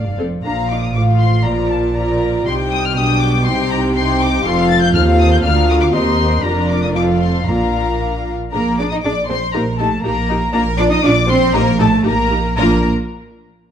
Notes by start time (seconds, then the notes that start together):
Already playing: F1 D5 F5
0.06 G2
0.18 F2 C4 A4
0.44 A#1 A#2 F3 D4 F4 F5 A#5
0.70 D#4 D6
0.83 D#6
0.94 A1 A2 F3 F4 F5 D6
1.20 C6
1.45 A#1 A#2 F3 F4 A#4 D5 A#5
1.71 A5
1.96 F3 F4 A#4 D5 A#5
2.46 C2 C3 G3 D#4 G4 G5 C6
2.72 D#6
2.84 F6
2.96 B1 B2 G3 D4 G4 G5 D#6
3.21 D6
3.45 C2 C3 C4 D#4 G4 G5 C6
3.72 A#5
3.95 C4 D#4 G4 G5 C6
4.20 D6
4.44 F1 F2 C4 F4 A4 F5 C6
4.70 A6
4.82 G6
4.94 D#2 C4 F4 A4 F5 F6
5.20 D#6
5.32 G6
5.44 D2 D4 F4 A#4 F5 F6
5.70 D#6
5.82 D6
5.94 D#2 C4 G4 A#4 D#5 C6
6.44 F1 F2 D4 F4 A#4 D5 A#5
6.69 D6
6.83 D#6
6.95 C4 F4 A4 F5 D6
7.21 C6
7.48 A#1 A#2 D4 F4 A#4 F5 A#5
8.53 A#1 A#3 D4 G#4 A#4 A#5
8.78 D4 G#4 D5 D6
8.90 D#4 D#5 D#6
9.03 A#1 D4 G#4 D5 D6
9.28 C4 D4 G#4 C5 C6
9.53 A#1 A#3 D#4 G4 A#4 A#5
9.78 A3 D#4 G4 A4 A5
10.03 A#1 A#3 D#4 G4 A#4 A#5
10.29 D#4 G4
10.53 A#1 A#3 D4 F4 A#4 A#5
10.78 D4 F4 D5 D6
10.91 D#4 D#5 D#6
11.03 A#1 D4 F4 D5 D6
11.28 C4 D4 F4 C5 C6
11.53 A#1 A#3 D#4 G4 A#4 A#5
11.79 A3 D#4 G4 A4 A5
12.05 A#1 A#3 D#4 G4 A#4 A#5
12.30 D#4 G4
12.57 A#1 A#3 D4 F4 A#4 A#5